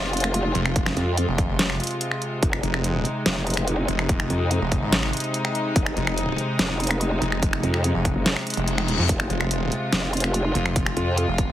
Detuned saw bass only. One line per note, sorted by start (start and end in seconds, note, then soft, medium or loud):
0.55 0.95 F1 loud
1.28 1.47 F1 loud
1.49 1.78 F1 loud
2.63 3.03 F1 loud
3.88 4.28 F1 loud
4.61 4.81 F1 loud
4.82 5.12 G#1 loud
5.97 6.37 F1 loud
7.22 7.62 F1 loud
7.95 8.14 F1 loud
8.57 8.97 F1 loud
8.99 9.08 F2 loud
9.30 9.70 F1 loud
10.55 10.95 F1 loud
11.28 11.47 F1 medium
11.49 11.52 G#1 loud